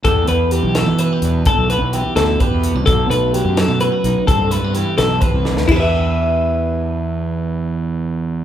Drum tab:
CC |------------|------------|------------|------------|
HH |x-x-x-x-x-x-|x-x-x-x-x-x-|x-x-x-x-x-x-|x-x-x-x-x---|
SD |------o-----|------o-----|------o-----|------o---oo|
BD |o-----------|o-------o---|o-----------|o-------o---|

CC |x-----------|------------|
HH |------------|------------|
SD |------------|------------|
BD |o-----------|------------|